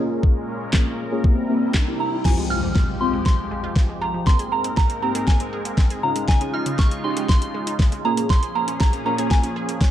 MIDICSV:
0, 0, Header, 1, 8, 480
1, 0, Start_track
1, 0, Key_signature, -4, "minor"
1, 0, Tempo, 504202
1, 222, Time_signature, 4, 2, 24, 8
1, 9432, End_track
2, 0, Start_track
2, 0, Title_t, "Synth bell"
2, 0, Program_c, 0, 98
2, 1903, Note_on_c, 0, 82, 74
2, 2143, Note_on_c, 0, 80, 84
2, 2150, Note_off_c, 0, 82, 0
2, 2366, Note_off_c, 0, 80, 0
2, 2382, Note_on_c, 0, 89, 91
2, 2829, Note_off_c, 0, 89, 0
2, 2862, Note_on_c, 0, 84, 82
2, 3090, Note_off_c, 0, 84, 0
2, 3101, Note_on_c, 0, 84, 88
2, 3784, Note_off_c, 0, 84, 0
2, 3822, Note_on_c, 0, 82, 80
2, 4063, Note_on_c, 0, 84, 93
2, 4069, Note_off_c, 0, 82, 0
2, 4303, Note_on_c, 0, 82, 86
2, 4310, Note_off_c, 0, 84, 0
2, 4531, Note_off_c, 0, 82, 0
2, 4542, Note_on_c, 0, 82, 87
2, 4770, Note_off_c, 0, 82, 0
2, 4782, Note_on_c, 0, 82, 86
2, 5005, Note_off_c, 0, 82, 0
2, 5022, Note_on_c, 0, 80, 89
2, 5742, Note_on_c, 0, 82, 83
2, 5764, Note_off_c, 0, 80, 0
2, 5983, Note_on_c, 0, 80, 97
2, 5989, Note_off_c, 0, 82, 0
2, 6206, Note_off_c, 0, 80, 0
2, 6222, Note_on_c, 0, 89, 90
2, 6461, Note_on_c, 0, 85, 94
2, 6469, Note_off_c, 0, 89, 0
2, 6685, Note_off_c, 0, 85, 0
2, 6702, Note_on_c, 0, 84, 90
2, 6925, Note_off_c, 0, 84, 0
2, 6942, Note_on_c, 0, 84, 99
2, 7662, Note_on_c, 0, 82, 84
2, 7684, Note_off_c, 0, 84, 0
2, 7770, Note_off_c, 0, 82, 0
2, 7902, Note_on_c, 0, 84, 104
2, 8126, Note_off_c, 0, 84, 0
2, 8143, Note_on_c, 0, 82, 88
2, 8372, Note_off_c, 0, 82, 0
2, 8383, Note_on_c, 0, 82, 94
2, 8612, Note_off_c, 0, 82, 0
2, 8623, Note_on_c, 0, 82, 95
2, 8863, Note_on_c, 0, 80, 95
2, 8870, Note_off_c, 0, 82, 0
2, 9432, Note_off_c, 0, 80, 0
2, 9432, End_track
3, 0, Start_track
3, 0, Title_t, "Synth stab"
3, 0, Program_c, 1, 62
3, 0, Note_on_c, 1, 58, 95
3, 0, Note_on_c, 1, 61, 84
3, 0, Note_on_c, 1, 65, 84
3, 0, Note_on_c, 1, 68, 105
3, 557, Note_off_c, 1, 58, 0
3, 557, Note_off_c, 1, 61, 0
3, 558, Note_off_c, 1, 65, 0
3, 559, Note_off_c, 1, 68, 0
3, 700, Note_on_c, 1, 58, 85
3, 701, Note_on_c, 1, 61, 80
3, 703, Note_on_c, 1, 65, 82
3, 704, Note_on_c, 1, 68, 94
3, 983, Note_off_c, 1, 58, 0
3, 983, Note_off_c, 1, 61, 0
3, 984, Note_off_c, 1, 65, 0
3, 985, Note_off_c, 1, 68, 0
3, 1060, Note_on_c, 1, 58, 90
3, 1062, Note_on_c, 1, 61, 80
3, 1064, Note_on_c, 1, 65, 78
3, 1065, Note_on_c, 1, 68, 93
3, 1169, Note_off_c, 1, 58, 0
3, 1180, Note_on_c, 1, 58, 101
3, 1182, Note_off_c, 1, 61, 0
3, 1182, Note_on_c, 1, 60, 93
3, 1183, Note_off_c, 1, 65, 0
3, 1183, Note_on_c, 1, 64, 88
3, 1184, Note_off_c, 1, 68, 0
3, 1185, Note_on_c, 1, 67, 106
3, 1373, Note_off_c, 1, 58, 0
3, 1374, Note_off_c, 1, 60, 0
3, 1375, Note_off_c, 1, 64, 0
3, 1376, Note_off_c, 1, 67, 0
3, 1420, Note_on_c, 1, 58, 89
3, 1422, Note_on_c, 1, 60, 84
3, 1423, Note_on_c, 1, 64, 85
3, 1425, Note_on_c, 1, 67, 99
3, 1703, Note_off_c, 1, 58, 0
3, 1703, Note_off_c, 1, 60, 0
3, 1704, Note_off_c, 1, 64, 0
3, 1705, Note_off_c, 1, 67, 0
3, 1780, Note_on_c, 1, 58, 89
3, 1781, Note_on_c, 1, 60, 83
3, 1783, Note_on_c, 1, 64, 84
3, 1785, Note_on_c, 1, 67, 96
3, 2063, Note_off_c, 1, 58, 0
3, 2063, Note_off_c, 1, 60, 0
3, 2064, Note_off_c, 1, 64, 0
3, 2065, Note_off_c, 1, 67, 0
3, 2140, Note_on_c, 1, 56, 75
3, 2141, Note_on_c, 1, 60, 71
3, 2143, Note_on_c, 1, 65, 71
3, 2144, Note_on_c, 1, 67, 83
3, 2235, Note_off_c, 1, 56, 0
3, 2236, Note_off_c, 1, 60, 0
3, 2236, Note_off_c, 1, 65, 0
3, 2237, Note_off_c, 1, 67, 0
3, 2260, Note_on_c, 1, 56, 76
3, 2262, Note_on_c, 1, 60, 68
3, 2263, Note_on_c, 1, 65, 67
3, 2265, Note_on_c, 1, 67, 81
3, 2730, Note_off_c, 1, 56, 0
3, 2731, Note_off_c, 1, 60, 0
3, 2732, Note_off_c, 1, 65, 0
3, 2733, Note_off_c, 1, 67, 0
3, 2860, Note_on_c, 1, 56, 76
3, 2861, Note_on_c, 1, 60, 71
3, 2863, Note_on_c, 1, 65, 69
3, 2865, Note_on_c, 1, 67, 83
3, 3612, Note_off_c, 1, 56, 0
3, 3613, Note_off_c, 1, 60, 0
3, 3614, Note_off_c, 1, 65, 0
3, 3614, Note_off_c, 1, 67, 0
3, 4060, Note_on_c, 1, 58, 76
3, 4061, Note_on_c, 1, 60, 69
3, 4063, Note_on_c, 1, 63, 69
3, 4064, Note_on_c, 1, 68, 81
3, 4624, Note_off_c, 1, 58, 0
3, 4625, Note_off_c, 1, 60, 0
3, 4626, Note_off_c, 1, 63, 0
3, 4626, Note_off_c, 1, 68, 0
3, 4781, Note_on_c, 1, 58, 80
3, 4782, Note_on_c, 1, 60, 73
3, 4784, Note_on_c, 1, 63, 70
3, 4785, Note_on_c, 1, 67, 87
3, 4875, Note_off_c, 1, 58, 0
3, 4876, Note_off_c, 1, 60, 0
3, 4877, Note_off_c, 1, 63, 0
3, 4877, Note_off_c, 1, 67, 0
3, 4900, Note_on_c, 1, 58, 71
3, 4901, Note_on_c, 1, 60, 69
3, 4903, Note_on_c, 1, 63, 67
3, 4904, Note_on_c, 1, 68, 80
3, 5652, Note_off_c, 1, 58, 0
3, 5653, Note_off_c, 1, 60, 0
3, 5654, Note_off_c, 1, 63, 0
3, 5654, Note_off_c, 1, 68, 0
3, 5740, Note_on_c, 1, 61, 82
3, 5741, Note_on_c, 1, 63, 73
3, 5743, Note_on_c, 1, 65, 75
3, 5745, Note_on_c, 1, 68, 90
3, 6029, Note_off_c, 1, 61, 0
3, 6030, Note_off_c, 1, 63, 0
3, 6031, Note_off_c, 1, 65, 0
3, 6031, Note_off_c, 1, 68, 0
3, 6100, Note_on_c, 1, 61, 73
3, 6101, Note_on_c, 1, 63, 67
3, 6103, Note_on_c, 1, 65, 68
3, 6105, Note_on_c, 1, 68, 82
3, 6570, Note_off_c, 1, 61, 0
3, 6571, Note_off_c, 1, 63, 0
3, 6572, Note_off_c, 1, 65, 0
3, 6573, Note_off_c, 1, 68, 0
3, 6700, Note_on_c, 1, 61, 80
3, 6701, Note_on_c, 1, 63, 74
3, 6703, Note_on_c, 1, 65, 69
3, 6705, Note_on_c, 1, 67, 87
3, 7452, Note_off_c, 1, 61, 0
3, 7453, Note_off_c, 1, 63, 0
3, 7453, Note_off_c, 1, 65, 0
3, 7454, Note_off_c, 1, 67, 0
3, 7659, Note_on_c, 1, 58, 83
3, 7661, Note_on_c, 1, 61, 74
3, 7663, Note_on_c, 1, 65, 74
3, 7664, Note_on_c, 1, 68, 89
3, 8429, Note_off_c, 1, 58, 0
3, 8430, Note_off_c, 1, 61, 0
3, 8430, Note_off_c, 1, 65, 0
3, 8431, Note_off_c, 1, 68, 0
3, 8620, Note_on_c, 1, 58, 80
3, 8622, Note_on_c, 1, 61, 71
3, 8623, Note_on_c, 1, 65, 69
3, 8625, Note_on_c, 1, 70, 91
3, 8715, Note_off_c, 1, 58, 0
3, 8716, Note_off_c, 1, 61, 0
3, 8717, Note_off_c, 1, 65, 0
3, 8717, Note_off_c, 1, 70, 0
3, 8740, Note_on_c, 1, 58, 73
3, 8742, Note_on_c, 1, 61, 72
3, 8743, Note_on_c, 1, 65, 70
3, 8745, Note_on_c, 1, 68, 80
3, 9432, Note_off_c, 1, 58, 0
3, 9432, Note_off_c, 1, 61, 0
3, 9432, Note_off_c, 1, 65, 0
3, 9432, Note_off_c, 1, 68, 0
3, 9432, End_track
4, 0, Start_track
4, 0, Title_t, "Synth arpeggio sound"
4, 0, Program_c, 2, 84
4, 2142, Note_on_c, 2, 53, 94
4, 2219, Note_off_c, 2, 53, 0
4, 2263, Note_on_c, 2, 56, 78
4, 2339, Note_off_c, 2, 56, 0
4, 2382, Note_on_c, 2, 65, 86
4, 2459, Note_off_c, 2, 65, 0
4, 2502, Note_on_c, 2, 53, 69
4, 2579, Note_off_c, 2, 53, 0
4, 2623, Note_on_c, 2, 56, 82
4, 2699, Note_off_c, 2, 56, 0
4, 2982, Note_on_c, 2, 56, 77
4, 3059, Note_off_c, 2, 56, 0
4, 3342, Note_on_c, 2, 56, 79
4, 3419, Note_off_c, 2, 56, 0
4, 3462, Note_on_c, 2, 65, 85
4, 3539, Note_off_c, 2, 65, 0
4, 3582, Note_on_c, 2, 53, 83
4, 3659, Note_off_c, 2, 53, 0
4, 3702, Note_on_c, 2, 56, 77
4, 3779, Note_off_c, 2, 56, 0
4, 3822, Note_on_c, 2, 65, 85
4, 3899, Note_off_c, 2, 65, 0
4, 3942, Note_on_c, 2, 53, 69
4, 4019, Note_off_c, 2, 53, 0
4, 4062, Note_on_c, 2, 60, 97
4, 4139, Note_off_c, 2, 60, 0
4, 4182, Note_on_c, 2, 68, 81
4, 4258, Note_off_c, 2, 68, 0
4, 4302, Note_on_c, 2, 58, 77
4, 4379, Note_off_c, 2, 58, 0
4, 4422, Note_on_c, 2, 60, 74
4, 4499, Note_off_c, 2, 60, 0
4, 4542, Note_on_c, 2, 68, 89
4, 4619, Note_off_c, 2, 68, 0
4, 4663, Note_on_c, 2, 58, 75
4, 4739, Note_off_c, 2, 58, 0
4, 4782, Note_on_c, 2, 60, 86
4, 4859, Note_off_c, 2, 60, 0
4, 4902, Note_on_c, 2, 68, 84
4, 4979, Note_off_c, 2, 68, 0
4, 5022, Note_on_c, 2, 58, 87
4, 5098, Note_off_c, 2, 58, 0
4, 5142, Note_on_c, 2, 60, 75
4, 5218, Note_off_c, 2, 60, 0
4, 5262, Note_on_c, 2, 68, 83
4, 5339, Note_off_c, 2, 68, 0
4, 5382, Note_on_c, 2, 58, 75
4, 5458, Note_off_c, 2, 58, 0
4, 5502, Note_on_c, 2, 60, 90
4, 5579, Note_off_c, 2, 60, 0
4, 5622, Note_on_c, 2, 68, 82
4, 5698, Note_off_c, 2, 68, 0
4, 5742, Note_on_c, 2, 49, 81
4, 5819, Note_off_c, 2, 49, 0
4, 5861, Note_on_c, 2, 56, 74
4, 5938, Note_off_c, 2, 56, 0
4, 5981, Note_on_c, 2, 49, 93
4, 6058, Note_off_c, 2, 49, 0
4, 6102, Note_on_c, 2, 56, 76
4, 6178, Note_off_c, 2, 56, 0
4, 6221, Note_on_c, 2, 63, 86
4, 6298, Note_off_c, 2, 63, 0
4, 6341, Note_on_c, 2, 49, 73
4, 6418, Note_off_c, 2, 49, 0
4, 6461, Note_on_c, 2, 56, 84
4, 6538, Note_off_c, 2, 56, 0
4, 6821, Note_on_c, 2, 56, 77
4, 6898, Note_off_c, 2, 56, 0
4, 7182, Note_on_c, 2, 56, 77
4, 7258, Note_off_c, 2, 56, 0
4, 7302, Note_on_c, 2, 63, 83
4, 7378, Note_off_c, 2, 63, 0
4, 7421, Note_on_c, 2, 49, 90
4, 7498, Note_off_c, 2, 49, 0
4, 7542, Note_on_c, 2, 56, 79
4, 7618, Note_off_c, 2, 56, 0
4, 7662, Note_on_c, 2, 68, 83
4, 7738, Note_off_c, 2, 68, 0
4, 7782, Note_on_c, 2, 58, 69
4, 7858, Note_off_c, 2, 58, 0
4, 7902, Note_on_c, 2, 61, 97
4, 7978, Note_off_c, 2, 61, 0
4, 8022, Note_on_c, 2, 68, 79
4, 8099, Note_off_c, 2, 68, 0
4, 8142, Note_on_c, 2, 58, 83
4, 8219, Note_off_c, 2, 58, 0
4, 8262, Note_on_c, 2, 61, 74
4, 8338, Note_off_c, 2, 61, 0
4, 8382, Note_on_c, 2, 68, 91
4, 8459, Note_off_c, 2, 68, 0
4, 8503, Note_on_c, 2, 58, 75
4, 8579, Note_off_c, 2, 58, 0
4, 8622, Note_on_c, 2, 61, 86
4, 8699, Note_off_c, 2, 61, 0
4, 8742, Note_on_c, 2, 68, 86
4, 8819, Note_off_c, 2, 68, 0
4, 8862, Note_on_c, 2, 58, 86
4, 8939, Note_off_c, 2, 58, 0
4, 8982, Note_on_c, 2, 61, 78
4, 9059, Note_off_c, 2, 61, 0
4, 9102, Note_on_c, 2, 68, 85
4, 9179, Note_off_c, 2, 68, 0
4, 9222, Note_on_c, 2, 58, 75
4, 9298, Note_off_c, 2, 58, 0
4, 9342, Note_on_c, 2, 61, 88
4, 9419, Note_off_c, 2, 61, 0
4, 9432, End_track
5, 0, Start_track
5, 0, Title_t, "Supersaw synth"
5, 0, Program_c, 3, 81
5, 0, Note_on_c, 3, 46, 78
5, 0, Note_on_c, 3, 56, 72
5, 0, Note_on_c, 3, 61, 75
5, 0, Note_on_c, 3, 70, 90
5, 1170, Note_off_c, 3, 46, 0
5, 1170, Note_off_c, 3, 56, 0
5, 1170, Note_off_c, 3, 61, 0
5, 1181, Note_on_c, 3, 48, 78
5, 1181, Note_on_c, 3, 55, 68
5, 1181, Note_on_c, 3, 64, 69
5, 2121, Note_off_c, 3, 70, 0
5, 2132, Note_off_c, 3, 48, 0
5, 2132, Note_off_c, 3, 55, 0
5, 2132, Note_off_c, 3, 64, 0
5, 2142, Note_on_c, 3, 41, 77
5, 2142, Note_on_c, 3, 53, 71
5, 2142, Note_on_c, 3, 56, 75
5, 2142, Note_on_c, 3, 67, 88
5, 4043, Note_off_c, 3, 41, 0
5, 4043, Note_off_c, 3, 53, 0
5, 4043, Note_off_c, 3, 56, 0
5, 4043, Note_off_c, 3, 67, 0
5, 4061, Note_on_c, 3, 44, 81
5, 4061, Note_on_c, 3, 56, 73
5, 4061, Note_on_c, 3, 60, 70
5, 4061, Note_on_c, 3, 70, 88
5, 5725, Note_off_c, 3, 44, 0
5, 5725, Note_off_c, 3, 60, 0
5, 5725, Note_off_c, 3, 70, 0
5, 5741, Note_on_c, 3, 49, 86
5, 5741, Note_on_c, 3, 63, 75
5, 5741, Note_on_c, 3, 65, 91
5, 7626, Note_off_c, 3, 56, 0
5, 7642, Note_off_c, 3, 63, 0
5, 7643, Note_off_c, 3, 49, 0
5, 7643, Note_off_c, 3, 65, 0
5, 7662, Note_on_c, 3, 46, 82
5, 7662, Note_on_c, 3, 53, 78
5, 7662, Note_on_c, 3, 61, 77
5, 7662, Note_on_c, 3, 68, 93
5, 9432, Note_off_c, 3, 46, 0
5, 9432, Note_off_c, 3, 53, 0
5, 9432, Note_off_c, 3, 61, 0
5, 9432, Note_off_c, 3, 68, 0
5, 9432, End_track
6, 0, Start_track
6, 0, Title_t, "Impact"
6, 0, Program_c, 4, 103
6, 2142, Note_on_c, 4, 60, 77
6, 4062, Note_off_c, 4, 60, 0
6, 9432, End_track
7, 0, Start_track
7, 0, Title_t, "Riser"
7, 0, Program_c, 5, 103
7, 222, Note_on_c, 5, 60, 77
7, 2142, Note_off_c, 5, 60, 0
7, 9432, End_track
8, 0, Start_track
8, 0, Title_t, "Drums"
8, 222, Note_on_c, 9, 36, 104
8, 317, Note_off_c, 9, 36, 0
8, 694, Note_on_c, 9, 38, 94
8, 701, Note_on_c, 9, 39, 118
8, 704, Note_on_c, 9, 36, 115
8, 789, Note_off_c, 9, 38, 0
8, 796, Note_off_c, 9, 39, 0
8, 799, Note_off_c, 9, 36, 0
8, 1183, Note_on_c, 9, 36, 100
8, 1278, Note_off_c, 9, 36, 0
8, 1658, Note_on_c, 9, 38, 84
8, 1659, Note_on_c, 9, 36, 112
8, 1664, Note_on_c, 9, 39, 109
8, 1753, Note_off_c, 9, 38, 0
8, 1755, Note_off_c, 9, 36, 0
8, 1759, Note_off_c, 9, 39, 0
8, 2142, Note_on_c, 9, 36, 102
8, 2142, Note_on_c, 9, 38, 55
8, 2142, Note_on_c, 9, 49, 92
8, 2237, Note_off_c, 9, 36, 0
8, 2237, Note_off_c, 9, 38, 0
8, 2237, Note_off_c, 9, 49, 0
8, 2622, Note_on_c, 9, 38, 57
8, 2624, Note_on_c, 9, 36, 120
8, 2717, Note_off_c, 9, 38, 0
8, 2719, Note_off_c, 9, 36, 0
8, 3102, Note_on_c, 9, 36, 103
8, 3102, Note_on_c, 9, 38, 58
8, 3197, Note_off_c, 9, 38, 0
8, 3198, Note_off_c, 9, 36, 0
8, 3579, Note_on_c, 9, 36, 112
8, 3582, Note_on_c, 9, 38, 58
8, 3674, Note_off_c, 9, 36, 0
8, 3677, Note_off_c, 9, 38, 0
8, 4062, Note_on_c, 9, 36, 100
8, 4062, Note_on_c, 9, 38, 57
8, 4157, Note_off_c, 9, 36, 0
8, 4157, Note_off_c, 9, 38, 0
8, 4182, Note_on_c, 9, 42, 55
8, 4277, Note_off_c, 9, 42, 0
8, 4421, Note_on_c, 9, 42, 71
8, 4516, Note_off_c, 9, 42, 0
8, 4542, Note_on_c, 9, 38, 65
8, 4544, Note_on_c, 9, 36, 120
8, 4637, Note_off_c, 9, 38, 0
8, 4639, Note_off_c, 9, 36, 0
8, 4662, Note_on_c, 9, 42, 49
8, 4757, Note_off_c, 9, 42, 0
8, 4903, Note_on_c, 9, 42, 80
8, 4998, Note_off_c, 9, 42, 0
8, 5021, Note_on_c, 9, 38, 68
8, 5022, Note_on_c, 9, 36, 101
8, 5117, Note_off_c, 9, 36, 0
8, 5117, Note_off_c, 9, 38, 0
8, 5141, Note_on_c, 9, 42, 57
8, 5237, Note_off_c, 9, 42, 0
8, 5382, Note_on_c, 9, 42, 78
8, 5477, Note_off_c, 9, 42, 0
8, 5499, Note_on_c, 9, 36, 114
8, 5501, Note_on_c, 9, 38, 69
8, 5594, Note_off_c, 9, 36, 0
8, 5596, Note_off_c, 9, 38, 0
8, 5621, Note_on_c, 9, 42, 50
8, 5716, Note_off_c, 9, 42, 0
8, 5861, Note_on_c, 9, 42, 68
8, 5956, Note_off_c, 9, 42, 0
8, 5982, Note_on_c, 9, 36, 102
8, 5982, Note_on_c, 9, 38, 69
8, 6077, Note_off_c, 9, 36, 0
8, 6077, Note_off_c, 9, 38, 0
8, 6102, Note_on_c, 9, 42, 54
8, 6197, Note_off_c, 9, 42, 0
8, 6341, Note_on_c, 9, 42, 71
8, 6436, Note_off_c, 9, 42, 0
8, 6461, Note_on_c, 9, 38, 73
8, 6463, Note_on_c, 9, 36, 121
8, 6557, Note_off_c, 9, 38, 0
8, 6559, Note_off_c, 9, 36, 0
8, 6582, Note_on_c, 9, 42, 50
8, 6677, Note_off_c, 9, 42, 0
8, 6823, Note_on_c, 9, 42, 79
8, 6918, Note_off_c, 9, 42, 0
8, 6942, Note_on_c, 9, 36, 102
8, 6942, Note_on_c, 9, 38, 73
8, 7037, Note_off_c, 9, 36, 0
8, 7037, Note_off_c, 9, 38, 0
8, 7062, Note_on_c, 9, 42, 59
8, 7157, Note_off_c, 9, 42, 0
8, 7302, Note_on_c, 9, 42, 81
8, 7398, Note_off_c, 9, 42, 0
8, 7419, Note_on_c, 9, 36, 114
8, 7422, Note_on_c, 9, 38, 75
8, 7514, Note_off_c, 9, 36, 0
8, 7517, Note_off_c, 9, 38, 0
8, 7541, Note_on_c, 9, 42, 54
8, 7636, Note_off_c, 9, 42, 0
8, 7781, Note_on_c, 9, 42, 73
8, 7877, Note_off_c, 9, 42, 0
8, 7902, Note_on_c, 9, 36, 113
8, 7902, Note_on_c, 9, 38, 75
8, 7997, Note_off_c, 9, 36, 0
8, 7997, Note_off_c, 9, 38, 0
8, 8022, Note_on_c, 9, 42, 53
8, 8117, Note_off_c, 9, 42, 0
8, 8261, Note_on_c, 9, 42, 69
8, 8356, Note_off_c, 9, 42, 0
8, 8382, Note_on_c, 9, 38, 80
8, 8384, Note_on_c, 9, 36, 124
8, 8477, Note_off_c, 9, 38, 0
8, 8479, Note_off_c, 9, 36, 0
8, 8502, Note_on_c, 9, 42, 52
8, 8597, Note_off_c, 9, 42, 0
8, 8743, Note_on_c, 9, 42, 78
8, 8839, Note_off_c, 9, 42, 0
8, 8862, Note_on_c, 9, 36, 102
8, 8862, Note_on_c, 9, 38, 80
8, 8957, Note_off_c, 9, 38, 0
8, 8958, Note_off_c, 9, 36, 0
8, 8982, Note_on_c, 9, 42, 58
8, 9077, Note_off_c, 9, 42, 0
8, 9222, Note_on_c, 9, 42, 76
8, 9317, Note_off_c, 9, 42, 0
8, 9339, Note_on_c, 9, 36, 119
8, 9342, Note_on_c, 9, 38, 84
8, 9432, Note_off_c, 9, 36, 0
8, 9432, Note_off_c, 9, 38, 0
8, 9432, End_track
0, 0, End_of_file